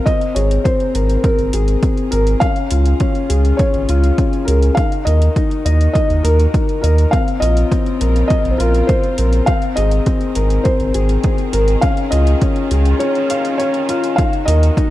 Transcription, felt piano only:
0.06 0.36 D#5 medium
0.35 0.66 C#5 medium
0.64 1.15 C5 medium
1.16 1.24 C5 soft
1.23 1.79 A#4 medium
2.11 2.42 A#4 medium
2.40 3.62 F5 loud
3.57 4.49 C#5 medium
4.45 4.77 A#4 medium
4.75 5.06 F5 medium
5.05 5.92 D#5 medium
5.93 6.25 D#5 medium
6.23 6.79 A#4 medium
6.81 7.13 A#4 medium
7.11 7.42 F5 medium
7.40 8.26 D#5 medium
8.28 8.52 D#5 medium
8.51 8.59 C5 medium
8.58 8.89 A#4 medium
8.87 9.49 C5 medium
9.46 9.77 F5 loud
9.76 10.67 D#5 medium
10.64 11.55 C5 medium
11.53 11.84 A#4 medium
11.81 12.13 F5 medium
12.11 12.66 D#5 medium
12.99 13.56 C#5 medium
13.58 14.19 C#5 medium
14.16 14.48 F5 medium
14.46 14.90 D#5 medium

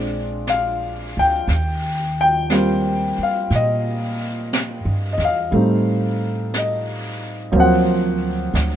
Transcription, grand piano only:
0.00 1.47 G#3 soft
0.00 1.49 C4 soft
0.00 1.51 D4 soft
0.00 1.53 F4 soft
0.00 0.46 D5 medium
0.49 1.20 F5 medium
1.19 2.19 G5 medium
2.21 3.17 G5 medium
2.50 5.50 G3 soft
2.50 5.53 A#3 soft
2.50 5.53 C4 soft
2.50 5.53 F4 soft
3.23 3.54 F5 medium
3.55 5.11 D#5 medium
5.13 5.22 D#5 medium
5.25 6.19 F5 medium
5.51 7.53 G3 soft
5.51 7.54 A3 soft
5.51 7.53 C4 soft
5.56 7.55 D#4 soft
6.58 7.59 D#5 medium
7.52 8.76 F#3 soft
7.52 8.76 A#3 soft
7.52 8.76 C4 soft
7.56 8.76 F3 medium
7.56 8.76 F#5 medium

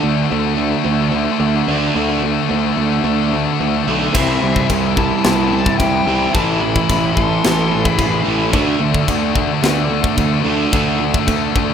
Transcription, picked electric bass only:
0.03 0.24 D2 medium
0.32 0.73 D2 loud
0.85 1.27 D2 medium
1.40 1.61 D2 medium
1.68 1.89 D2 medium
1.95 2.37 D2 loud
2.51 2.71 D2 medium
2.77 2.98 D2 medium
3.04 3.46 D2 loud
3.60 3.81 D2 medium
3.87 4.08 B1 medium
4.15 4.36 C2 loud
4.42 4.63 C2 medium
4.70 5.11 C2 medium
5.25 5.66 C2 medium
5.80 6.00 C2 medium
6.06 6.27 C2 medium
6.35 6.76 A1 loud
6.90 7.10 A1 medium
7.17 7.37 A1 medium
7.45 7.86 A1 medium
7.98 8.19 A1 medium
8.27 8.53 A1 loud
8.53 8.74 D2 loud
8.80 9.01 D2 medium
9.09 9.50 D2 medium
9.63 10.04 D2 loud
10.18 10.39 D2 medium
10.45 10.66 D2 medium
10.73 11.14 D2 loud
11.28 11.48 D2 loud
11.56 11.74 D2 medium

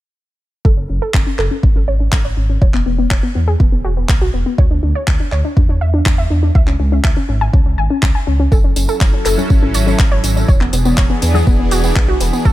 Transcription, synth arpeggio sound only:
0.65 0.73 A4 medium
0.77 0.85 C#4 medium
0.89 0.97 C#4 medium
1.02 1.10 A4 medium
1.14 1.22 C#4 medium
1.26 1.34 C#4 medium
1.39 1.47 A4 medium
1.51 1.59 C#4 medium
1.63 1.71 C#4 medium
1.76 1.84 C#4 medium
1.88 1.96 C#5 medium
2.00 2.08 C#4 medium
2.12 2.20 C#4 medium
2.25 2.33 C#5 medium
2.37 2.45 C#4 medium
2.49 2.57 C#4 medium
2.62 2.70 C#5 medium
2.74 2.82 B3 medium
2.86 2.94 B3 medium
2.98 3.06 B3 medium
3.11 3.19 C#5 medium
3.23 3.31 B3 medium
3.35 3.43 B3 medium
3.48 3.56 G#4 medium
3.60 3.68 B3 medium
3.72 3.80 B3 medium
3.84 3.93 F#4 medium
3.97 4.05 B3 medium
4.09 4.17 B3 medium
4.21 4.29 F#4 medium
4.34 4.42 B3 medium
4.46 4.54 B3 medium
4.58 4.66 C#5 medium
4.71 4.79 D4 medium
4.83 4.91 D4 medium
4.95 5.03 C#5 medium
5.07 5.15 D4 medium
5.20 5.28 D4 medium
5.32 5.40 C#5 medium
5.44 5.52 D4 medium
5.57 5.65 D4 medium
5.69 5.77 D4 medium
5.81 5.89 E5 medium
5.94 6.02 D4 medium
6.06 6.14 D4 medium
6.18 6.26 E5 medium
6.30 6.38 D4 medium
6.43 6.51 D4 medium
6.55 6.63 E5 medium
6.67 6.75 C#4 medium
6.80 6.88 C#4 medium
6.92 7.00 C#4 medium
7.04 7.12 E5 medium
7.17 7.25 C#4 medium
7.29 7.37 C#4 medium
7.41 7.49 G#5 medium
7.53 7.61 C#4 medium
7.66 7.74 C#4 medium
7.78 7.86 G#5 medium
7.90 7.98 C#4 medium
8.03 8.11 C#4 medium
8.15 8.23 G#5 medium
8.27 8.35 C#4 medium
8.40 8.47 C#4 medium
8.52 8.60 A4 medium
8.64 8.72 C#4 medium
8.76 8.84 C#4 medium
8.89 8.97 A4 medium
9.01 9.09 C#4 medium
9.13 9.21 C#4 medium
9.26 9.34 A4 medium
9.38 9.46 C#4 medium
9.50 9.58 C#4 medium
9.62 9.70 C#4 medium
9.75 9.83 C#5 medium
9.87 9.95 C#4 medium
9.99 10.07 C#4 medium
10.12 10.20 C#5 medium
10.24 10.32 C#4 medium
10.36 10.44 C#4 medium
10.48 10.56 C#5 medium
10.61 10.69 B3 medium
10.73 10.81 B3 medium
10.85 10.93 B3 medium
10.98 11.06 C#5 medium
11.10 11.18 B3 medium
11.22 11.30 B3 medium
11.35 11.43 G#4 medium
11.47 11.55 B3 medium
11.59 11.67 B3 medium
11.72 11.80 F#4 medium
11.84 11.92 B3 medium
11.96 12.04 B3 medium
12.08 12.16 F#4 medium
12.21 12.29 B3 medium
12.33 12.41 B3 medium
12.45 12.53 A4 loud

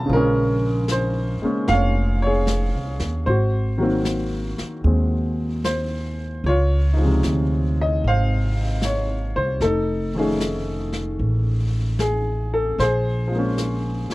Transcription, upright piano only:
0.00 0.10 D#3 soft
0.00 0.11 G#3 soft
0.00 0.11 A3 soft
0.00 0.12 C#4 medium
0.00 0.12 D#5 medium
0.00 0.13 G#5 medium
0.00 0.11 A5 medium
0.00 0.12 B5 loud
0.06 3.24 C#3 medium
0.06 3.26 F3 medium
0.13 1.40 G#3 medium
0.13 1.43 C#4 medium
0.13 0.87 A#4 medium
0.92 1.72 C5 medium
1.42 3.26 G#3 soft
1.42 3.27 A#3 soft
1.42 3.28 C#4 soft
1.68 2.18 F5 medium
1.73 2.21 C#5 medium
2.22 3.23 C#5 medium
2.27 3.25 G#4 medium
3.26 5.62 F#4 medium
3.26 5.61 C5 medium
3.78 6.44 D#3 medium
3.78 6.44 F#3 soft
3.78 6.45 A#3 soft
3.83 4.85 C4 medium
4.84 6.44 G#3 soft
4.84 6.46 C4 soft
5.65 6.47 C5 medium
6.46 8.01 F4 medium
6.46 7.21 C#5 medium
6.93 9.61 F3 soft
6.93 9.60 D#4 soft
7.01 9.63 G#3 soft
7.05 9.65 C3 medium
7.81 8.04 D#5 medium
8.08 9.35 C5 medium
8.08 8.87 F5 medium
8.85 9.34 C#5 medium
9.36 9.63 C5 medium
9.62 10.18 D#4 medium
9.62 10.12 A4 medium
10.14 12.78 D#3 soft
10.14 12.79 F3 soft
10.14 12.80 A3 soft
10.14 11.18 G#4 medium
10.19 12.80 C#4 soft
10.19 11.72 D#4 soft
12.00 12.49 G#4 medium
12.54 12.80 A4 medium
12.80 14.14 G#4 medium
12.80 13.54 C5 medium
13.28 14.14 F3 soft
13.28 14.14 G#3 soft
13.35 14.14 A#3 soft
13.35 14.14 C#4 medium

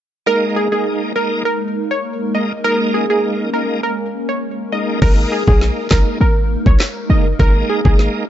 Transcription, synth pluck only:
0.27 0.40 A#4 loud
0.56 0.69 G#4 medium
0.72 0.84 G#4 medium
1.16 1.29 A#4 medium
1.45 1.58 A#4 medium
1.91 2.02 C#5 medium
2.35 2.48 D#5 medium
2.64 2.77 A#4 loud
2.94 3.07 G#4 medium
3.10 3.21 G#4 medium
3.54 3.67 A#4 medium
3.83 3.96 A#4 medium
4.29 4.40 C#5 medium
4.72 4.85 D#5 medium
5.02 5.15 A#4 loud
5.32 5.45 G#4 medium
5.48 5.59 G#4 medium
5.91 6.04 A#4 medium
6.21 6.34 A#4 medium
6.67 6.78 C#5 medium
7.10 7.23 D#5 medium
7.40 7.53 A#4 loud
7.70 7.82 G#4 medium
7.85 7.97 G#4 medium

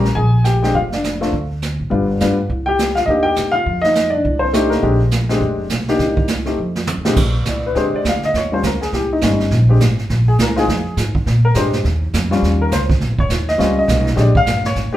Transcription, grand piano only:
0.00 0.15 A#4 medium
0.00 0.17 A#5 medium
0.15 0.44 G#4 medium
0.15 0.43 G#5 loud
0.44 0.62 G4 medium
0.44 0.62 G5 medium
0.63 0.73 G#3 medium
0.63 0.73 C4 medium
0.63 0.73 D4 medium
0.63 0.74 G4 medium
0.63 0.75 G5 medium
0.75 0.81 F4 medium
0.75 0.80 F5 medium
0.94 1.20 D4 medium
0.94 1.31 D5 medium
1.21 1.31 A3 medium
1.21 1.31 C4 medium
1.21 1.32 D4 medium
1.21 1.32 F4 medium
1.90 2.19 G3 medium
1.90 2.19 B3 medium
1.90 2.19 D4 medium
1.90 2.19 F4 medium
2.21 2.37 G3 medium
2.21 2.37 B3 medium
2.21 2.37 D4 medium
2.21 2.37 F4 medium
2.66 2.95 G4 medium
2.66 2.94 G5 loud
2.95 3.03 F4 medium
2.95 3.00 F5 medium
3.06 3.52 A#3 medium
3.06 3.52 D4 soft
3.06 3.52 D#4 medium
3.06 3.23 D#5 medium
3.10 3.24 G4 medium
3.23 3.53 G4 medium
3.23 3.55 G5 loud
3.52 3.82 F4 medium
3.52 3.84 F5 loud
3.82 4.12 D#4 medium
3.82 4.10 D#5 loud
4.10 4.39 D5 medium
4.14 4.41 D4 medium
4.39 4.71 C5 medium
4.44 4.71 C4 medium
4.53 4.83 A3 medium
4.53 4.82 D4 medium
4.53 4.83 D#4 medium
4.53 4.82 G4 medium
4.70 5.56 A#3 medium
4.70 5.55 A#4 medium
4.83 4.99 G#3 medium
4.83 4.99 C4 medium
4.83 4.99 D4 medium
4.83 4.99 G4 medium
5.29 5.68 G#3 medium
5.29 5.69 C4 medium
5.29 5.69 D4 medium
5.29 5.69 G4 medium
5.89 6.27 A#3 medium
5.89 6.27 D4 medium
5.89 6.27 D#4 medium
5.89 6.28 G4 medium
6.46 6.57 A3 medium
6.46 6.57 C4 soft
6.46 6.57 D#4 soft
6.46 6.58 G4 medium
7.05 7.16 A#2 medium
7.05 7.16 G#3 medium
7.05 7.16 C4 medium
7.05 7.16 D4 medium
7.05 7.16 G4 medium
7.49 7.65 D5 medium
7.67 7.77 B4 medium
7.75 8.19 G#3 medium
7.75 8.19 C4 medium
7.75 8.19 D4 medium
7.75 8.20 G4 medium
7.75 7.94 C5 medium
7.96 8.06 D5 medium
8.09 8.24 F5 medium
8.25 8.35 D#5 medium
8.37 8.53 C#5 medium
8.52 8.62 G3 medium
8.52 8.62 C4 medium
8.52 8.62 C#4 soft
8.52 8.63 F4 medium
8.52 8.64 C5 medium
8.66 8.82 A#4 medium
8.82 8.92 G#4 medium
8.94 9.11 G4 medium
9.13 9.19 D#4 medium
9.22 9.51 G3 medium
9.22 9.51 C4 soft
9.22 9.52 C#4 medium
9.22 9.52 D#4 medium
9.69 9.79 G#3 medium
9.69 9.80 C4 medium
9.69 9.80 D4 medium
9.69 9.80 G4 medium
10.28 10.39 G#4 medium
10.42 10.58 A#4 medium
10.56 10.67 G#3 medium
10.56 10.66 C4 medium
10.56 10.67 D#4 medium
10.56 10.67 F4 medium
10.56 10.95 G#4 medium
11.45 11.55 A#4 medium
11.55 11.84 G#3 medium
11.55 11.84 C4 medium
11.55 11.85 D4 medium
11.55 11.85 G4 medium
11.55 11.73 C5 medium
12.31 12.69 G3 medium
12.31 12.70 C4 medium
12.31 12.70 C#4 medium
12.31 12.70 F4 medium
12.62 12.72 A#4 medium
12.73 12.83 C5 medium
13.20 13.47 C#5 medium
13.49 13.76 D#5 medium
13.58 14.02 G3 medium
13.58 14.02 C4 medium
13.58 14.02 C#4 medium
13.58 14.03 F4 medium
13.79 14.16 D#5 medium
14.16 14.33 G#3 medium
14.16 14.33 C4 medium
14.16 14.33 D4 medium
14.16 14.33 G4 medium
14.16 14.19 C#5 medium
14.21 14.37 D5 medium
14.37 14.63 F5 loud
14.66 14.93 C#5 medium
14.93 14.97 G#3 medium
14.93 14.97 C4 medium
14.93 14.97 D4 medium
14.93 14.97 G4 medium

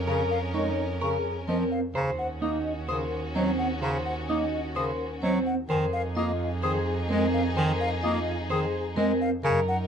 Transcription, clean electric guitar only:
0.08 0.38 A#4 medium
0.54 0.84 D#4 medium
1.01 1.31 A#4 medium
1.49 1.78 C4 medium
1.95 2.25 C5 medium
2.42 2.72 D#4 medium
2.89 3.19 C5 medium
3.36 3.66 C4 medium
3.83 4.13 C5 medium
4.30 4.60 D#4 medium
4.76 5.06 C5 medium
5.23 5.53 C4 medium
5.70 6.00 C5 medium
6.17 6.47 F4 medium
6.63 6.94 C5 medium
7.10 7.41 C4 medium
7.57 7.87 C5 medium
8.03 8.34 F4 medium
8.50 8.81 C5 medium
8.97 9.28 C4 medium
9.45 9.75 A#4 medium

